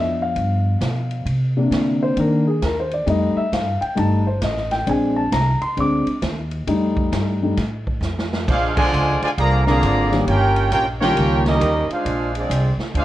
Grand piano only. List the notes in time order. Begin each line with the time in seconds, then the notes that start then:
Already playing: F3 B3 D4 E5
0.22 F5
1.57 C3 A#3 D4
2.03 C5
2.17 D#3 A#3 D4 A#4
2.47 G#4
2.64 A#4
2.80 C5
2.94 D5
3.06 G3 A3 D#4 D#5
3.37 E5
3.54 F5
3.81 G5
3.95 G3 A3 D#4 A5
4.27 C5
4.44 D#5
4.72 G5
4.86 G#3 C4 D4 G#5
5.17 A5
5.33 A#5
5.62 C6
5.77 G#3 C4 D4 D6
6.67 G3 A3 D#4
7.43 G3 A3 D#4
9.66 D3 G#3 A#3 C4 F4
10.11 D#3 G3 A#3 C#4 G4
11.01 D#3 G3 A#3 C#4 F4